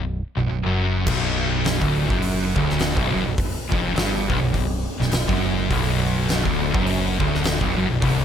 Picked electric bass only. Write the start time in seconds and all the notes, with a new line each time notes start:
Already playing: B0
0.37 B0
0.50 B0
0.66 F#1
1.07 B0
1.82 D1
2.10 F#1
2.56 D1
2.97 B0
3.14 F#1
3.26 B0
3.72 F1
3.96 G1
4.30 B0
4.41 B0
4.54 B0
4.99 B0
5.12 B0
5.29 F#1
5.71 B0
6.45 D1
6.74 F#1
7.20 D1
7.61 B0
7.78 F#1
7.90 B0
8.02 C1